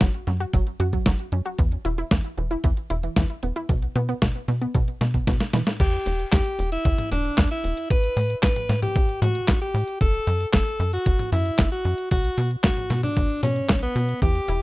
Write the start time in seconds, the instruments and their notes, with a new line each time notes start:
0.01 analog synth bass F#1, synth arpeggio sound F#3, kick, snare, closed hi-hat
0.14 closed hi-hat
0.27 analog synth bass F#2, synth arpeggio sound F#3, snare, closed hi-hat
0.40 synth arpeggio sound F#4, closed hi-hat
0.53 analog synth bass F#1, synth arpeggio sound F#3, kick, closed hi-hat
0.67 closed hi-hat
0.80 analog synth bass F#2, synth arpeggio sound F#4, closed hi-hat
0.93 synth arpeggio sound F#3, kick, closed hi-hat
1.06 analog synth bass F#1, synth arpeggio sound F#3, kick, snare, closed hi-hat
1.19 closed hi-hat
1.32 analog synth bass F#2, synth arpeggio sound C#4, closed hi-hat
1.45 synth arpeggio sound F#4, closed hi-hat
1.58 analog synth bass E2, synth arpeggio sound E3, kick, closed hi-hat
1.72 closed hi-hat
1.85 analog synth bass E1, synth arpeggio sound E4, closed hi-hat
1.98 synth arpeggio sound E4, closed hi-hat
2.11 analog synth bass E2, synth arpeggio sound E3, kick, snare, closed hi-hat
2.24 closed hi-hat
2.37 analog synth bass E1, synth arpeggio sound E3, closed hi-hat
2.51 synth arpeggio sound E4, closed hi-hat
2.64 analog synth bass E2, synth arpeggio sound E3, kick, closed hi-hat
2.77 closed hi-hat
2.90 analog synth bass E1, synth arpeggio sound E4, closed hi-hat
3.03 synth arpeggio sound E3, closed hi-hat
3.16 analog synth bass E2, synth arpeggio sound E3, kick, snare, closed hi-hat
3.30 closed hi-hat
3.43 analog synth bass E1, synth arpeggio sound B3, closed hi-hat
3.56 synth arpeggio sound E4, closed hi-hat
3.69 analog synth bass B1, synth arpeggio sound B2, kick, closed hi-hat
3.82 closed hi-hat
3.95 analog synth bass B2, synth arpeggio sound B3, closed hi-hat
4.09 synth arpeggio sound B3, closed hi-hat
4.22 analog synth bass B1, synth arpeggio sound B2, kick, snare, closed hi-hat
4.35 closed hi-hat
4.48 analog synth bass B2, synth arpeggio sound B2, snare, closed hi-hat
4.61 synth arpeggio sound B3, closed hi-hat
4.75 analog synth bass B1, synth arpeggio sound B2, kick, closed hi-hat
4.88 closed hi-hat
5.01 analog synth bass B2, synth arpeggio sound B2, snare, closed hi-hat
5.14 synth arpeggio sound B2, kick, closed hi-hat
5.27 analog synth bass B1, synth arpeggio sound B2, kick, snare, closed hi-hat
5.40 snare, closed hi-hat
5.53 analog synth bass B2, synth arpeggio sound E3, snare, closed hi-hat
5.67 synth arpeggio sound A2, snare, closed hi-hat
5.80 analog synth bass E2, alto saxophone G4, kick, closed hi-hat, crash
5.93 closed hi-hat
6.06 analog synth bass E1, open hi-hat
6.19 closed hi-hat
6.32 analog synth bass E2, alto saxophone G4, kick, snare, clap, closed hi-hat
6.46 closed hi-hat
6.59 analog synth bass E1, open hi-hat
6.72 alto saxophone E4, closed hi-hat
6.85 analog synth bass E2, kick, closed hi-hat
6.98 closed hi-hat, high tom
7.11 analog synth bass E1, alto saxophone D4, open hi-hat
7.25 closed hi-hat
7.38 analog synth bass E2, kick, snare, clap, closed hi-hat
7.51 alto saxophone E4, closed hi-hat
7.64 analog synth bass E1, open hi-hat
7.77 closed hi-hat
7.90 analog synth bass A1, alto saxophone B4, kick, closed hi-hat
8.04 closed hi-hat
8.17 analog synth bass A2, open hi-hat
8.30 closed hi-hat
8.43 analog synth bass A1, alto saxophone B4, kick, snare, clap, closed hi-hat
8.56 closed hi-hat, high tom
8.69 analog synth bass A2, snare, open hi-hat
8.82 alto saxophone G4, closed hi-hat, high tom
8.96 analog synth bass A1, kick, closed hi-hat
9.09 closed hi-hat
9.22 analog synth bass A2, alto saxophone F#4, open hi-hat, high tom
9.35 closed hi-hat
9.48 analog synth bass A1, kick, snare, clap, closed hi-hat
9.61 alto saxophone G4, closed hi-hat
9.74 analog synth bass A2, open hi-hat
9.88 closed hi-hat
10.01 analog synth bass F#1, alto saxophone A4, kick, closed hi-hat
10.14 closed hi-hat
10.27 analog synth bass F#2, open hi-hat
10.40 closed hi-hat
10.53 analog synth bass F#1, alto saxophone A4, kick, snare, clap, closed hi-hat
10.67 closed hi-hat
10.79 analog synth bass F#2, open hi-hat
10.93 alto saxophone F#4, closed hi-hat
11.06 analog synth bass F#1, kick, closed hi-hat
11.19 closed hi-hat, high tom
11.32 analog synth bass F#2, alto saxophone E4, open hi-hat
11.45 closed hi-hat
11.59 analog synth bass F#1, kick, snare, clap, closed hi-hat
11.72 alto saxophone F#4, closed hi-hat
11.85 analog synth bass F#2, open hi-hat
11.98 closed hi-hat
12.11 analog synth bass B1, alto saxophone F#4, kick, closed hi-hat
12.24 closed hi-hat
12.38 analog synth bass B2, open hi-hat
12.51 closed hi-hat
12.64 analog synth bass B1, alto saxophone F#4, kick, snare, clap, closed hi-hat
12.77 closed hi-hat, high tom
12.90 analog synth bass B2, snare, open hi-hat
13.03 alto saxophone D4, closed hi-hat, high tom
13.17 analog synth bass B1, kick, closed hi-hat
13.30 closed hi-hat
13.43 analog synth bass B2, alto saxophone C#4, open hi-hat, high tom
13.56 closed hi-hat
13.69 analog synth bass B1, kick, snare, clap, closed hi-hat
13.82 alto saxophone B3, closed hi-hat
13.96 analog synth bass B2, open hi-hat
14.09 closed hi-hat
14.22 analog synth bass E2, synth arpeggio sound E3, alto saxophone G4, kick, closed hi-hat
14.35 closed hi-hat
14.48 analog synth bass E1, synth arpeggio sound E4, open hi-hat